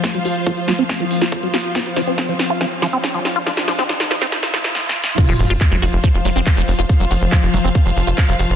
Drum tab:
CC |------------------------------------------------|------------------------------------------------|------------------------------------------------|x-----------------------------------------------|
HH |x--x--o--x--x--x--o--x--x--x--o-----x--x--o--x--|x--x--o--x--x--x--o--x--x--x--o--x--x--x--o--x--|x--x--o--x--x--x--o-----x--x--o--x--------------|x--x--o--x--x--x--o--x--x--x--o--x--x--x--o--x--|
CP |------------------------------------------------|------------------------------------------------|------------------------------------------------|------------x-----------------------x-----------|
SD |o-----------------o-----o--------o--------o-----|o-----o-----o-----o-----o-----o-----o-----o-----|o--o--o--o--o--o--o--o--o--o--o--o--o---o---o---|------------------------------------------------|
BD |o-----------o-----------o-----------o-----------|o-----------o-----------o-----------o-----------|o-----------o-----------o-----------------------|o-----------o-----------o-----------o-----------|

CC |------------------------------------------------|
HH |x--x--o--x--x--x--o--x--x--x--o--x--x--x--o--x--|
CP |------------x-----------------------x-----------|
SD |------------------------------------------------|
BD |o-----------o-----------o-----------o-----------|